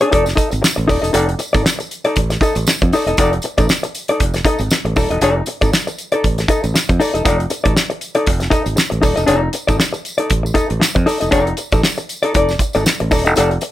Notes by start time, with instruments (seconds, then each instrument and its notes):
0.01 hollow-body jazz guitar D#4 A4 D5, closed hi-hat
0.11 fingered electric bass F1, hollow-body jazz guitar D#4 A4 D5, kick, closed hi-hat
0.26 muted hollow-body jazz guitar stroke, snare, closed hi-hat, tambourine
0.35 hollow-body jazz guitar D#4 A4 D#5, kick, closed hi-hat, tambourine
0.51 fingered electric bass G#1, muted hollow-body jazz guitar stroke, closed hi-hat, tambourine
0.62 muted hollow-body jazz guitar stroke, snare, tambourine
0.76 fingered electric bass A1, muted hollow-body jazz guitar stroke, closed hi-hat
0.88 fingered electric bass D#1, hollow-body jazz guitar D#4 A4 D5, kick, open hi-hat, tambourine
1.02 fingered electric bass E1, hollow-body jazz guitar D#4 A4 D#5, closed hi-hat, tambourine
1.13 fingered electric bass F1, hollow-body jazz guitar D#4 A4 D5, closed hi-hat, tambourine
1.28 muted hollow-body jazz guitar stroke, closed hi-hat
1.39 muted hollow-body jazz guitar stroke, closed hi-hat, tambourine
1.53 fingered electric bass G#1, hollow-body jazz guitar D#4 A4 D5, kick, closed hi-hat, tambourine
1.64 muted hollow-body jazz guitar stroke, snare, tambourine
1.79 muted hollow-body jazz guitar stroke, closed hi-hat, tambourine
1.91 closed hi-hat, tambourine
2.05 hollow-body jazz guitar D#4 A4 D5, closed hi-hat
2.16 fingered electric bass A1, kick, closed hi-hat
2.30 muted hollow-body jazz guitar stroke, snare, closed hi-hat, tambourine
2.41 hollow-body jazz guitar D#4 A4 D#5, kick, closed hi-hat, tambourine
2.55 fingered electric bass A1, muted hollow-body jazz guitar stroke, closed hi-hat, tambourine
2.67 muted hollow-body jazz guitar stroke, snare, tambourine
2.82 fingered electric bass F2, muted hollow-body jazz guitar stroke, kick, closed hi-hat
2.93 hollow-body jazz guitar D#4 A4 D5, open hi-hat, tambourine
3.06 fingered electric bass E1, hollow-body jazz guitar D#4 A4 D#5, closed hi-hat, tambourine
3.17 fingered electric bass F1, hollow-body jazz guitar D#4 A4 D5, kick, closed hi-hat, tambourine
3.33 muted hollow-body jazz guitar stroke, closed hi-hat
3.42 muted hollow-body jazz guitar stroke, closed hi-hat, tambourine
3.58 fingered electric bass A1, hollow-body jazz guitar D#4 A4 D5, kick, closed hi-hat, tambourine
3.69 muted hollow-body jazz guitar stroke, snare, tambourine
3.83 muted hollow-body jazz guitar stroke, closed hi-hat, tambourine
3.95 closed hi-hat, tambourine
4.08 hollow-body jazz guitar D#4 A4 D5, closed hi-hat
4.20 fingered electric bass F1, kick, closed hi-hat
4.34 muted hollow-body jazz guitar stroke, snare, closed hi-hat, tambourine
4.45 hollow-body jazz guitar D#4 A4 D#5, kick, closed hi-hat, tambourine
4.58 fingered electric bass G#1, muted hollow-body jazz guitar stroke, closed hi-hat, tambourine
4.70 muted hollow-body jazz guitar stroke, snare, tambourine
4.85 fingered electric bass A1, muted hollow-body jazz guitar stroke, closed hi-hat
4.96 fingered electric bass D#1, hollow-body jazz guitar D#4 A4 D5, kick, open hi-hat, tambourine
5.10 fingered electric bass E1, hollow-body jazz guitar D#4 A4 D#5, closed hi-hat
5.21 fingered electric bass F1, hollow-body jazz guitar D#4 A4 D5, closed hi-hat, tambourine
5.37 muted hollow-body jazz guitar stroke
5.46 muted hollow-body jazz guitar stroke, closed hi-hat, tambourine
5.61 fingered electric bass G#1, hollow-body jazz guitar D#4 A4 D5, kick, closed hi-hat, tambourine
5.73 muted hollow-body jazz guitar stroke, snare, tambourine
5.87 muted hollow-body jazz guitar stroke, closed hi-hat, tambourine
5.98 closed hi-hat, tambourine
6.12 hollow-body jazz guitar D#4 A4 D5, closed hi-hat
6.24 fingered electric bass A1, kick, closed hi-hat
6.38 muted hollow-body jazz guitar stroke, snare, closed hi-hat, tambourine
6.48 hollow-body jazz guitar D#4 A4 D#5, kick, closed hi-hat, tambourine
6.63 fingered electric bass A1, muted hollow-body jazz guitar stroke, closed hi-hat, tambourine
6.74 muted hollow-body jazz guitar stroke, snare, tambourine
6.89 fingered electric bass F2, muted hollow-body jazz guitar stroke, kick, closed hi-hat
7.00 hollow-body jazz guitar D#4 A4 D5, open hi-hat, tambourine
7.14 fingered electric bass E1, hollow-body jazz guitar D#4 A4 D#5, closed hi-hat, tambourine
7.25 fingered electric bass F1, hollow-body jazz guitar D#4 A4 D5, kick, closed hi-hat, tambourine
7.39 muted hollow-body jazz guitar stroke, closed hi-hat
7.50 muted hollow-body jazz guitar stroke, closed hi-hat, tambourine
7.64 fingered electric bass A1, hollow-body jazz guitar D#4 A4 D5, kick, closed hi-hat
7.76 muted hollow-body jazz guitar stroke, snare, tambourine
7.90 muted hollow-body jazz guitar stroke, closed hi-hat
8.01 closed hi-hat, tambourine
8.15 hollow-body jazz guitar D#4 A4 D5, closed hi-hat
8.27 fingered electric bass F1, kick, closed hi-hat
8.40 muted hollow-body jazz guitar stroke, snare, closed hi-hat, tambourine
8.50 hollow-body jazz guitar D#4 A4 D#5, kick, closed hi-hat, tambourine
8.65 fingered electric bass G#1, muted hollow-body jazz guitar stroke, closed hi-hat, tambourine
8.76 muted hollow-body jazz guitar stroke, snare, tambourine
8.90 fingered electric bass A1, muted hollow-body jazz guitar stroke, closed hi-hat
9.02 fingered electric bass D#1, hollow-body jazz guitar D#4 A4 D5, kick, open hi-hat, tambourine
9.16 fingered electric bass E1, hollow-body jazz guitar D#4 A4 D#5, closed hi-hat, tambourine
9.26 fingered electric bass F1, hollow-body jazz guitar D#4 A4 D5, closed hi-hat, tambourine
9.41 muted hollow-body jazz guitar stroke
9.53 muted hollow-body jazz guitar stroke, closed hi-hat, tambourine
9.67 fingered electric bass G#1, hollow-body jazz guitar D#4 A4 D5, kick, closed hi-hat, tambourine
9.79 muted hollow-body jazz guitar stroke, snare, tambourine
9.93 muted hollow-body jazz guitar stroke, closed hi-hat, tambourine
10.05 closed hi-hat, tambourine
10.18 hollow-body jazz guitar D#4 A4 D5, closed hi-hat
10.30 fingered electric bass A1, kick, closed hi-hat
10.43 muted hollow-body jazz guitar stroke, tambourine
10.54 hollow-body jazz guitar D#4 A4 D#5, kick, closed hi-hat, tambourine
10.69 fingered electric bass A1, muted hollow-body jazz guitar stroke, closed hi-hat
10.80 muted hollow-body jazz guitar stroke, snare, tambourine
10.95 fingered electric bass F2, muted hollow-body jazz guitar stroke, kick, closed hi-hat
11.06 hollow-body jazz guitar D#4 A4 D5, open hi-hat, tambourine
11.20 fingered electric bass E1, hollow-body jazz guitar D#4 A4 D#5, closed hi-hat, tambourine
11.31 fingered electric bass F1, hollow-body jazz guitar D#4 A4 D5, kick, closed hi-hat, tambourine
11.46 muted hollow-body jazz guitar stroke, closed hi-hat
11.57 muted hollow-body jazz guitar stroke, closed hi-hat, tambourine
11.72 fingered electric bass A1, hollow-body jazz guitar D#4 A4 D5, kick, closed hi-hat, tambourine
11.83 muted hollow-body jazz guitar stroke, snare, tambourine
11.98 muted hollow-body jazz guitar stroke, closed hi-hat, tambourine
12.09 closed hi-hat, tambourine
12.23 hollow-body jazz guitar D#4 A4 D5, closed hi-hat
12.34 fingered electric bass F1, hollow-body jazz guitar D#4 A4 D5, kick, closed hi-hat
12.49 snare, tambourine
12.59 muted hollow-body jazz guitar stroke, kick, closed hi-hat, tambourine
12.73 fingered electric bass G#1, hollow-body jazz guitar D#4 A4 D5, closed hi-hat, tambourine
12.86 muted hollow-body jazz guitar stroke, snare, tambourine
13.00 fingered electric bass A1, muted hollow-body jazz guitar stroke, closed hi-hat
13.11 fingered electric bass D#1, hollow-body jazz guitar D#4 A4 D5, kick, open hi-hat, tambourine
13.25 fingered electric bass E1, hollow-body jazz guitar D#4 A4 D#5, closed hi-hat, tambourine
13.36 fingered electric bass F1, hollow-body jazz guitar D#4 A4 D5, closed hi-hat, tambourine
13.51 muted hollow-body jazz guitar stroke, closed hi-hat
13.61 muted hollow-body jazz guitar stroke, closed hi-hat, tambourine